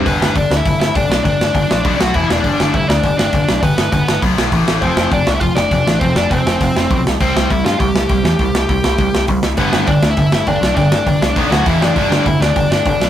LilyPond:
<<
  \new Staff \with { instrumentName = "Lead electric guitar" } { \time 4/4 \key g \mixolydian \tempo 4 = 202 <b b'>4 <d' d''>8. <e' e''>8. <e' e''>8 <d' d''>4 | <d' d''>2~ <d' d''>8 <fis' fis''>8 <e' e''>8 <d' d''>8~ | <d' d''>4 <e' e''>8 <d' d''>4 <d' d''>4. | <b b'>4 <b b'>4 r2 |
<c' c''>4 <d' d''>8. <e' e''>16 <f' f''>8 <d' d''>4. | <c' c''>8 <d' d''>8 <c' c''>2~ <c' c''>8 r8 | <c' c''>4 <e' e''>8 <f' f''>8 <g' g''>2~ | <g' g''>2. r4 |
<b b'>4 <d' d''>8. <e' e''>8. <e' e''>8 <d' d''>4 | <d' d''>2~ <d' d''>8 <fis' fis''>8 <e' e''>8 <d' d''>8~ | <d' d''>4 <e' e''>8 <d' d''>4 <d' d''>4. | }
  \new Staff \with { instrumentName = "Overdriven electric guitar" } { \clef bass \time 4/4 \key g \mixolydian r1 | r1 | r1 | r1 |
r1 | r1 | r1 | r1 |
<g, d g>4 <g, d>8 r8 <g, d>8 r8 <g, d>8 r8 | <g, d>8 r8 <g, d>8 r8 <b, fis b>4 <e, b, e>4 | <g, d g>4 <g, d>8 r8 <g, d>8 r8 <g, d>8 r8 | }
  \new Staff \with { instrumentName = "Overdriven electric guitar" } { \clef bass \time 4/4 \key g \mixolydian <g, d g>4 <g, d>8 r8 <g, d>8 r8 <g, d>8 r8 | <g, d>8 r8 <g, d>8 r8 <b, fis b>4 <e, b, e>4 | <g, d g>4 <g, d>8 r8 <g, d>8 r8 <g, d>8 r8 | <g, d>8 r8 <g, d>8 r8 <b, fis b>4 <a, e a>4 |
<f, c f>4 <f, c>8 r8 <f, c>8 r8 <f, c>8 r8 | <f, c>8 r8 <f, c>8 r8 <f, c>8 r8 <f, c>8 r8 | <c g c'>4 <c g>8 r8 <c g>8 r8 <c g>8 r8 | <c g>8 r8 <c g>8 r8 <c g>8 r8 <c g>8 r8 |
<g, d g>4 <g, d>8 r8 <g, d>8 r8 <g, d>8 r8 | <g, d>8 r8 <g, d>8 r8 <b, fis b>4 <e, b, e>4 | <g, d g>4 <g, d>8 r8 <g, d>8 r8 <g, d>8 r8 | }
  \new Staff \with { instrumentName = "Picked electric bass" } { \clef bass \time 4/4 \key g \mixolydian g,,8 g,,8 g,,8 d,8 g,,8 g,,8 g,,8 b,,8 | g,,8 g,,8 g,,8 bes,,8 b,,8 b,,8 e,,8 e,,8 | g,,8 g,,8 g,,8 d,8 g,,8 g,,8 g,,8 b,,8 | g,,8 g,,8 g,,8 g,,8 b,,8 b,,8 a,,8 a,,8 |
f,,8 f,,8 f,,8 c,8 f,,8 f,,8 f,,8 a,,8 | f,,8 f,,8 f,,8 f,,8 f,,8 f,,8 b,,8 c,8 | c,8 c,8 c,8 g,8 c,8 c,8 c,8 e,8 | c,8 c,8 c,8 c,8 c,8 c,8 c,8 c,8 |
g,,8 g,,8 g,,8 d,8 g,,8 g,,8 g,,8 b,,8 | g,,8 g,,8 g,,8 c,8 b,,8 d,8 e,,8 fis,,8 | g,,8 g,,8 g,,8 d,8 g,,8 g,,8 g,,8 b,,8 | }
  \new DrumStaff \with { instrumentName = "Drums" } \drummode { \time 4/4 <hho bd>8 sn8 <hho bd>8 sn8 <hho bd>8 sn8 <hho bd>8 sn8 | <hho bd>8 sn8 <hho bd>8 sn8 <hho bd>8 sn8 <hho bd>8 sn8 | <hho bd>8 sn8 <hho bd>8 sn8 <hho bd>8 sn8 <hho bd>8 sn8 | <hho bd>8 sn8 <hho bd>8 sn8 <hho bd>8 sn8 <hho bd>8 sn8 |
<hho bd>8 sn8 <hho bd>8 sn8 <hho bd>8 sn8 <hho bd>8 sn8 | <hho bd>8 sn8 <hho bd>8 sn8 <hho bd>8 sn8 <hho bd>8 sn8 | <hho bd>8 sn8 <hho bd>8 sn8 <hho bd>8 sn8 <hho bd>8 sn8 | <hho bd>8 sn8 <hho bd>8 sn8 <hho bd>8 sn8 <hho bd>8 sn8 |
<hho bd>8 sn8 <hho bd>8 sn8 <hho bd>8 sn8 <hho bd>8 sn8 | <hho bd>8 sn8 <hho bd>8 sn8 <hho bd>8 sn8 <hho bd>8 sn8 | <hho bd>8 sn8 <hho bd>8 sn8 <hho bd>8 sn8 <hho bd>8 sn8 | }
>>